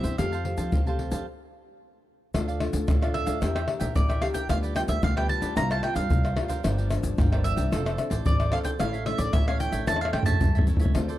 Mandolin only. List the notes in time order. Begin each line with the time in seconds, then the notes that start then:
Already playing: E5
0.18 F5
3.14 E5
3.96 D5
4.22 F5
4.34 G5
4.50 F5
4.76 G5
4.89 E5
5.04 F5
5.17 G5
5.29 A5
5.57 A#5
5.72 A5
5.84 G5
5.96 F5
7.44 E5
8.26 D5
8.53 F5
8.65 G5
8.80 F5
9.06 E5
9.18 D5
9.33 E5
9.48 F5
9.60 G5
9.88 A5
10.01 F5
10.13 G5
10.26 A5